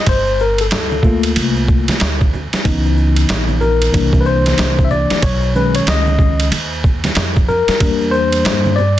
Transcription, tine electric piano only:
0.09 C5
0.41 A#4
0.61 A4
0.73 A4
1.04 A3 A#3 F4
2.64 E3 B3 D#4
3.61 A#4
3.93 E3 A#3 D4
4.21 B4
4.26 C5
4.85 E5
4.91 D5
5.23 C#5
5.55 D#3 G#3 C#4 B4
5.75 C#5
5.89 D#5
7.49 A#4
7.80 G3 A#3 D4
8.11 C5
8.76 D5

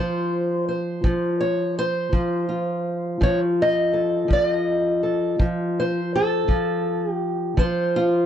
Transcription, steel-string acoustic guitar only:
Already playing: F3 F4 C5
0.69 C5
1.04 F3
1.41 C#5
1.79 C5
2.12 F3
2.49 F4
3.21 F3 C#5
3.62 D#5
3.93 A4
4.28 F3
4.33 D5
4.46 D#5
5.03 A4
5.39 F3
5.80 C5
6.16 A4
6.48 F3
7.12 G4
7.57 F3 C5
7.96 F4

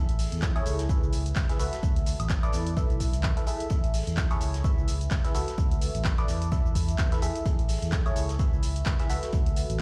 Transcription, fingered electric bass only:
Already playing: A1
0.32 E2
0.66 C#2
1.03 C#2
1.36 C#2
1.83 D2
2.20 A1
2.53 E2
2.90 B1
3.24 E2
3.71 A1
4.07 E2
4.41 C#2
4.78 C#2
5.11 C#2
5.58 D2
5.95 A1
6.29 E2
6.65 E2
6.99 E2
7.46 A1
7.82 E2
8.16 C#2
8.53 C#2
8.86 C#2
9.33 D2
9.70 A1

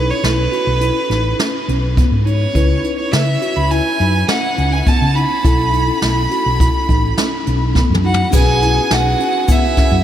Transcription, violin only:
Already playing: B4
0.10 C#5
0.23 B4
2.26 C#5
2.98 C#5
3.11 E5
3.56 B5
3.71 G#5
4.29 F#5
4.72 G#5
4.88 A5
5.14 B5
8.05 F#5
8.34 G#5
8.92 F#5
9.51 E5

